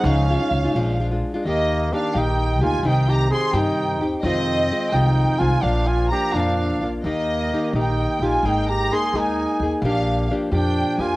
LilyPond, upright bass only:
\new Staff \with { instrumentName = "Upright bass" } { \clef bass \time 6/8 \key bes \minor \tempo 4. = 86 des,4 des,8 bes,,4. | \key ees \major ees,4. bes,,4 d,8 | c,4. g,4 ees,8 | f,4. c,4 c,8 |
bes,,4. f,4 bes,,8 | ees,4. bes,,4 bes,,8 | aes,,4. ees,4 ees,8 | bes,,4. f,4 f,8 | }